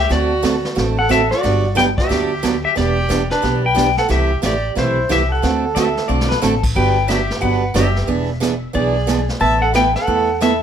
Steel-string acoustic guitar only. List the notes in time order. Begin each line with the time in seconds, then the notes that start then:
0.09 D3 A3 C4 F#4 A4
0.43 D3 A3 C4 F#4 A4
0.75 D3 A3 C4 F#4 A4
1.09 D3 A3 C4 F#4 A4
1.43 D3 F#3 B3 D4 G4
1.75 D3 F#3 B3 D4 G4
2.09 D3 F#3 B3 D4 G4
2.43 D3 F#3 B3 D4 G4
2.75 E3 B3 D4 G4
3.09 E3 B3 D4 G4
3.42 E3 B3 D4 G4
3.75 E3 B3 D4 G4
4.08 C3 E3 A3 E4 G4
4.42 C3 E3 A3 E4 G4
4.75 C3 E3 A3 E4 G4
5.09 C3 E3 A3 E4 G4
5.42 D3 A3 C4 F#4 A4
5.76 D3 A3 C4 F#4 A4
6.08 D3 A3 C4 F#4 A4
6.42 D3 A3 C4 F#4 A4
6.75 D3 F#3 B3 D4 G4
7.08 D3 F#3 B3 D4 G4
7.41 D3 F#3 B3 D4 G4
7.74 D3 F#3 B3 D4 G4
8.07 E3 B3 D4 G#4
8.40 E3 B3 D4 G#4
8.73 E3 B3 D4 G#4
9.07 E3 B3 D4 G#4
9.40 A3 B3 E4 B4
9.74 A3 B3 E4 B4
10.07 A3 B3 E4 B4
10.40 A3 B3 E4 B4